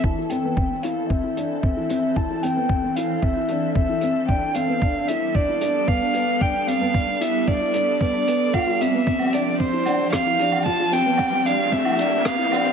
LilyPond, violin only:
\new Staff \with { instrumentName = "Violin" } { \time 4/4 \key a \minor \tempo 4 = 113 a''8 g''4 f''8 e''4 e''4 | a''8 g''4 f''8 e''4 e''4 | g''8 f''4 e''8 d''4 f''4 | g''8 f''4 e''8 d''4 d''4 |
f''8 e''4 d''8 c''4 f''4 | a''8 g''4 f''8 e''4 f''4 | }